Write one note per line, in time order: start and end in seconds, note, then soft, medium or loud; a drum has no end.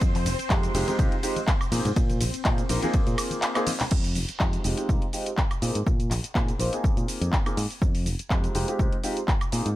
0.00 0.27 F2 medium
0.00 3.93 C4 medium
0.00 3.93 C5 medium
0.00 kick loud
0.00 closed hi-hat medium
0.00 shaker soft
0.14 clap soft
0.14 open hi-hat medium
0.14 tambourine soft
0.14 high conga medium
0.14 shaker soft
0.25 0.34 F1 medium
0.25 open hi-hat loud
0.25 ride medium
0.25 tambourine loud
0.25 low conga medium
0.25 shaker medium
0.39 muted fingered electric bass stroke soft
0.39 closed hi-hat medium
0.39 tambourine soft
0.39 shaker soft
0.50 0.66 F2 medium
0.50 0.72 G#3 medium
0.50 0.72 C4 medium
0.50 0.72 D#4 medium
0.50 0.72 F4 medium
0.50 0.72 G4 medium
0.50 kick loud
0.50 clap loud
0.50 closed hi-hat medium
0.50 tambourine medium
0.50 high conga medium
0.50 shaker soft
0.63 closed hi-hat soft
0.63 shaker soft
0.74 0.83 F1 loud
0.74 0.84 G#3 loud
0.74 0.85 C4 medium
0.74 0.85 D#4 medium
0.74 0.85 F4 medium
0.74 0.85 G4 loud
0.74 open hi-hat loud
0.74 ride medium
0.74 tambourine loud
0.74 low conga medium
0.74 shaker medium
0.88 0.97 G#3 medium
0.88 0.97 C4 medium
0.88 0.97 D#4 medium
0.88 0.98 F4 medium
0.88 0.98 G4 loud
0.88 closed hi-hat medium
0.88 tambourine soft
0.88 high conga medium
0.88 shaker soft
0.99 1.07 C2 medium
0.99 1.13 C4 medium
0.99 1.13 D#4 medium
0.99 1.13 F4 medium
0.99 1.13 G4 loud
0.99 kick loud
0.99 closed hi-hat medium
0.99 shaker soft
1.12 closed hi-hat soft
1.12 tambourine soft
1.23 1.37 G#3 medium
1.23 1.37 C4 medium
1.23 1.37 D#4 medium
1.23 1.37 F4 medium
1.23 1.38 G4 loud
1.23 open hi-hat loud
1.23 ride medium
1.23 tambourine loud
1.23 shaker medium
1.36 closed hi-hat medium
1.36 tambourine soft
1.36 high conga medium
1.36 shaker soft
1.48 kick loud
1.48 clap loud
1.48 closed hi-hat medium
1.48 shaker soft
1.61 tambourine soft
1.61 high woodblock medium
1.61 shaker soft
1.72 1.80 A#2 medium
1.72 1.86 A#3 medium
1.72 1.86 C4 medium
1.72 1.86 D#4 medium
1.72 1.86 F4 medium
1.72 1.86 G#4 loud
1.72 open hi-hat loud
1.72 ride medium
1.72 tambourine medium
1.72 high conga medium
1.72 shaker medium
1.85 1.93 G#2 medium
1.85 closed hi-hat medium
1.85 tambourine soft
1.85 low conga medium
1.85 shaker soft
1.96 2.22 A#2 loud
1.96 kick loud
1.96 closed hi-hat medium
1.96 tambourine medium
1.96 shaker soft
2.10 closed hi-hat soft
2.10 tambourine soft
2.10 high conga medium
2.10 shaker soft
2.21 2.29 A#1 medium
2.21 open hi-hat loud
2.21 ride medium
2.21 tambourine loud
2.21 low conga loud
2.21 shaker medium
2.33 muted fingered electric bass stroke soft
2.33 closed hi-hat medium
2.33 tambourine soft
2.33 shaker soft
2.45 2.62 A#2 medium
2.45 2.59 A#3 medium
2.45 2.59 C4 medium
2.45 2.59 D#4 medium
2.45 2.60 F4 medium
2.45 2.60 G#4 medium
2.45 kick loud
2.45 clap loud
2.45 closed hi-hat medium
2.45 tambourine medium
2.45 high conga medium
2.45 shaker soft
2.58 closed hi-hat soft
2.58 shaker soft
2.69 2.78 A#1 loud
2.69 2.79 A#3 medium
2.69 2.80 C4 medium
2.69 2.80 D#4 medium
2.69 2.80 F4 medium
2.69 2.80 C5 medium
2.69 open hi-hat loud
2.69 ride medium
2.69 tambourine loud
2.69 low conga medium
2.69 shaker medium
2.82 3.52 A#3 medium
2.82 3.53 C4 medium
2.82 3.53 D#4 medium
2.82 3.53 F4 medium
2.82 3.53 G#4 medium
2.82 closed hi-hat medium
2.82 tambourine soft
2.82 high conga loud
2.82 shaker soft
2.94 kick loud
2.94 closed hi-hat medium
2.94 tambourine medium
2.94 shaker soft
3.07 3.15 A#2 medium
3.07 closed hi-hat soft
3.07 tambourine soft
3.07 shaker soft
3.18 open hi-hat loud
3.18 ride medium
3.18 tambourine loud
3.18 high woodblock medium
3.18 shaker medium
3.30 closed hi-hat medium
3.30 tambourine soft
3.30 high conga medium
3.30 shaker soft
3.42 clap loud
3.42 closed hi-hat medium
3.42 tambourine medium
3.42 shaker soft
3.55 3.68 A#3 loud
3.55 3.68 C4 medium
3.55 3.68 D#4 medium
3.55 3.68 F4 medium
3.55 3.69 G#4 loud
3.55 clap medium
3.55 closed hi-hat soft
3.55 high woodblock medium
3.55 shaker soft
3.67 open hi-hat loud
3.67 ride medium
3.67 tambourine medium
3.67 high conga medium
3.67 shaker medium
3.80 clap loud
3.80 open hi-hat medium
3.80 tambourine soft
3.80 low conga medium
3.80 shaker soft
3.91 4.18 F2 medium
3.91 kick loud
3.91 crash loud
3.91 shaker soft
4.04 open hi-hat medium
4.04 shaker soft
4.15 4.24 F1 medium
4.15 open hi-hat loud
4.15 shaker medium
4.29 closed hi-hat medium
4.29 shaker soft
4.40 4.57 F2 medium
4.40 4.62 G#3 medium
4.40 4.62 C4 medium
4.40 4.62 D#4 medium
4.40 4.62 F4 medium
4.40 4.62 G4 medium
4.40 kick loud
4.40 clap loud
4.40 shaker soft
4.53 closed hi-hat medium
4.53 shaker soft
4.64 4.73 F1 medium
4.64 4.74 G#3 medium
4.64 4.75 C4 medium
4.64 4.75 D#4 medium
4.64 4.75 F4 medium
4.64 4.75 G4 loud
4.64 open hi-hat loud
4.64 shaker medium
4.77 4.87 G#3 medium
4.77 4.87 C4 medium
4.77 4.87 D#4 medium
4.77 4.87 F4 medium
4.77 4.87 G4 loud
4.77 closed hi-hat medium
4.77 shaker soft
4.88 4.97 C2 medium
4.88 5.03 G#3 loud
4.88 5.03 C4 medium
4.88 5.03 D#4 medium
4.88 5.03 F4 medium
4.88 kick loud
4.88 shaker soft
5.02 closed hi-hat soft
5.13 5.27 G#3 medium
5.13 5.28 C4 medium
5.13 5.28 D#4 medium
5.13 5.28 F4 medium
5.13 5.28 G4 medium
5.13 open hi-hat loud
5.13 shaker medium
5.26 closed hi-hat medium
5.26 shaker soft
5.37 kick loud
5.37 clap loud
5.37 shaker soft
5.51 closed hi-hat soft
5.51 high woodblock medium
5.51 shaker soft
5.62 5.70 A#2 medium
5.62 5.76 A#3 medium
5.62 5.76 C4 medium
5.62 5.76 D#4 medium
5.62 5.76 F4 medium
5.62 5.77 G#4 medium
5.62 open hi-hat loud
5.62 shaker medium
5.75 5.83 G#2 medium
5.75 closed hi-hat medium
5.75 shaker soft
5.87 6.12 A#2 medium
5.87 kick loud
5.87 shaker soft
6.00 closed hi-hat medium
6.00 shaker soft
6.11 6.19 A#1 medium
6.11 clap medium
6.11 open hi-hat loud
6.11 shaker medium
6.24 muted fingered electric bass stroke soft
6.24 closed hi-hat medium
6.24 shaker soft
6.35 6.52 A#2 medium
6.35 6.49 A#3 medium
6.35 6.49 C4 medium
6.35 6.50 D#4 medium
6.35 6.50 F4 medium
6.35 6.50 G#4 medium
6.35 kick loud
6.35 clap loud
6.35 shaker soft
6.48 closed hi-hat medium
6.48 shaker soft
6.59 6.68 A#1 medium
6.59 6.70 A#3 medium
6.59 6.70 C4 medium
6.59 6.70 D#4 medium
6.59 6.70 F4 medium
6.59 6.70 C5 medium
6.59 open hi-hat loud
6.59 shaker medium
6.72 7.43 A#3 medium
6.72 7.43 C4 medium
6.72 7.43 D#4 medium
6.72 7.43 F4 medium
6.72 7.43 G#4 medium
6.72 closed hi-hat medium
6.72 shaker soft
6.84 kick loud
6.84 shaker soft
6.97 7.05 A#2 medium
6.97 closed hi-hat soft
6.97 shaker soft
7.08 open hi-hat loud
7.08 shaker medium
7.21 7.29 F2 medium
7.21 closed hi-hat medium
7.21 shaker soft
7.33 kick loud
7.33 clap loud
7.33 shaker soft
7.45 7.58 A#3 loud
7.45 7.58 C4 medium
7.45 7.59 D#4 medium
7.45 7.59 F4 medium
7.45 7.59 G#4 loud
7.45 closed hi-hat soft
7.45 high woodblock medium
7.45 shaker soft
7.57 7.66 G#2 loud
7.57 open hi-hat loud
7.57 shaker medium
7.71 open hi-hat medium
7.71 shaker soft
7.82 8.08 F2 medium
7.82 kick loud
7.82 shaker soft
7.95 open hi-hat medium
7.95 shaker soft
8.06 8.14 F1 medium
8.06 open hi-hat loud
8.06 shaker medium
8.19 muted fingered electric bass stroke soft
8.19 closed hi-hat medium
8.19 shaker soft
8.30 8.47 F2 medium
8.30 8.52 G#3 medium
8.30 8.52 C4 medium
8.30 8.52 D#4 medium
8.30 8.53 F4 medium
8.30 8.53 G4 medium
8.30 kick loud
8.30 clap loud
8.30 shaker soft
8.44 closed hi-hat soft
8.44 shaker soft
8.55 8.63 F1 medium
8.55 8.65 G#3 medium
8.55 8.65 C4 medium
8.55 8.65 D#4 medium
8.55 8.65 F4 medium
8.55 8.65 G4 loud
8.55 open hi-hat loud
8.55 shaker medium
8.68 8.78 G#3 medium
8.68 8.78 C4 medium
8.68 8.78 D#4 medium
8.68 8.78 F4 medium
8.68 8.78 G4 loud
8.68 closed hi-hat medium
8.68 shaker soft
8.79 8.88 C2 medium
8.79 8.93 G#3 loud
8.79 8.94 C4 medium
8.79 8.94 D#4 medium
8.79 8.94 F4 medium
8.79 8.94 G4 loud
8.79 kick loud
8.79 shaker soft
8.92 closed hi-hat soft
9.03 9.18 G#3 medium
9.03 9.18 C4 medium
9.03 9.18 D#4 medium
9.03 9.18 F4 medium
9.03 9.18 G4 loud
9.03 open hi-hat loud
9.03 shaker medium
9.17 closed hi-hat medium
9.17 shaker soft
9.28 kick loud
9.28 clap loud
9.28 shaker soft
9.41 closed hi-hat soft
9.41 high woodblock medium
9.41 shaker soft
9.52 9.61 A#2 medium
9.52 9.66 A#3 medium
9.52 9.67 C4 medium
9.52 9.67 D#4 medium
9.52 9.67 F4 medium
9.52 9.67 G#4 medium
9.52 open hi-hat loud
9.52 shaker medium
9.66 9.73 G#2 medium
9.66 closed hi-hat medium
9.66 shaker soft